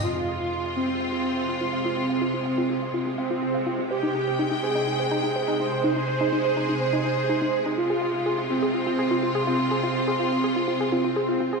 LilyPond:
<<
  \new Staff \with { instrumentName = "String section" } { \time 4/4 \key f \minor \tempo 4 = 124 << { f'1~ | f'1 | g''1 | aes'1 |
f'1~ | f'1 | } \\ { <c aes>1~ | <c aes>1~ | <c aes>1~ | <c aes>1~ |
<c aes>1~ | <c aes>1 | } >> }
  \new Staff \with { instrumentName = "Synth pluck" } { \time 4/4 \key f \minor f'16 f'16 f''16 f'16 f'16 f''16 f'16 f'16 f''16 f'16 f'16 f''16 f'16 f'16 f''16 f'16 | f'16 f''16 f'16 f'16 f''16 f'16 f'16 f''16 f'16 f'16 f''16 f'16 f'16 f''16 f'16 f'16 | c''16 ees'16 ees'16 c''16 ees'16 ees'16 c''16 ees'16 ees'16 c''16 ees'16 ees'16 c''16 ees'16 ees'16 c''16 | ees'16 ees'16 c''16 ees'16 ees'16 c''16 ees'16 ees'16 c''16 ees'16 ees'16 c''16 ees'16 ees'16 c''16 ees'16 |
f'16 aes'16 f'16 f'16 aes'16 f'16 f'16 aes'16 f'16 f'16 aes'16 f'16 f'16 aes'16 f'16 f'16 | aes'16 f'16 f'16 aes'16 f'16 f'16 aes'16 f'16 f'16 aes'16 f'16 f'16 aes'16 f'16 f'16 aes'16 | }
  \new Staff \with { instrumentName = "Supersaw synth" } { \time 4/4 \key f \minor f'4. c'2 c'8~ | c'2~ c'8 c'4. | g'4. aes'2 c''8~ | c''2~ c''8 c''4. |
f'4. c'2 c'8~ | c'2~ c'8 c'4. | }
>>